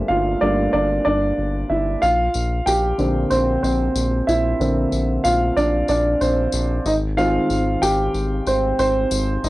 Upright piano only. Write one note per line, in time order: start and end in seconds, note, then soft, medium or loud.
0.00 0.40 G3 medium
0.00 0.42 A3 medium
0.00 0.41 A#3 medium
0.00 2.03 C4 medium
0.00 0.43 D4 medium
0.00 1.72 E4 medium
0.00 2.03 C5 medium
0.00 0.41 D5 medium
0.00 0.11 E5 medium
0.08 0.39 F4 medium
0.08 0.41 F5 medium
0.41 0.70 G3 soft
0.41 0.70 A3 soft
0.41 0.71 A#3 medium
0.41 0.72 D4 medium
0.41 0.71 D5 medium
0.73 1.04 D4 medium
0.73 1.03 D5 medium
1.05 1.66 D4 medium
1.05 1.65 D5 medium
1.70 2.01 E4 medium
1.70 2.03 E5 medium
2.02 2.63 F4 medium
2.02 2.62 F5 loud
2.66 3.28 G4 medium
2.66 3.32 G5 medium
2.98 4.58 D3 medium
2.98 4.59 A#3 soft
2.98 3.31 C4 medium
3.30 3.61 C4 medium
3.30 3.61 C5 medium
3.63 4.24 C4 medium
3.63 4.23 C5 medium
4.27 5.21 E4 medium
4.27 5.27 E5 medium
4.60 5.53 D3 medium
4.60 5.53 A#3 medium
4.60 5.53 C4 medium
5.24 5.55 F4 medium
5.24 5.54 F5 medium
5.56 5.87 D4 medium
5.56 5.87 D5 medium
5.89 6.19 D4 medium
5.89 6.22 D5 medium
6.21 6.82 C4 medium
6.21 6.81 C5 medium
6.86 6.94 D#4 medium
6.86 6.93 D#5 medium
7.17 9.49 D#3 medium
7.17 9.49 G#3 soft
7.17 8.47 C4 medium
7.17 7.79 F4 medium
7.17 7.78 F5 medium
7.82 8.43 G4 medium
7.82 8.48 G5 medium
8.47 8.77 C4 medium
8.47 8.78 C5 medium
8.79 9.40 C4 medium
8.79 9.45 C5 loud
9.44 9.49 D#4 medium
9.44 9.49 D#5 medium